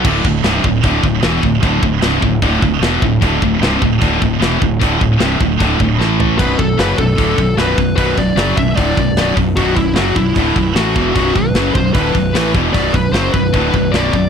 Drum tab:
CC |x-------|--------|--------|--------|
HH |--o-o-o-|o-o-o-o-|o-o-o-o-|o-o-o---|
SD |--o---o-|--o---o-|--o---o-|--o---o-|
FT |--------|--------|--------|-------o|
BD |oo-ooo-o|oo-ooo-o|oo-ooo-o|oo-ooo--|

CC |x-------|--------|--------|--------|
HH |--o-o-o-|o-o-o-o-|o-o-o-o-|o-o-o-o-|
SD |--o---o-|--o---o-|--o---o-|--o---o-|
FT |--------|--------|--------|--------|
BD |oo-ooo-o|oo-ooo-o|oo-ooo-o|oo-ooo-o|

CC |--------|
HH |o-o-o-o-|
SD |--o---o-|
FT |--------|
BD |oo-ooo-o|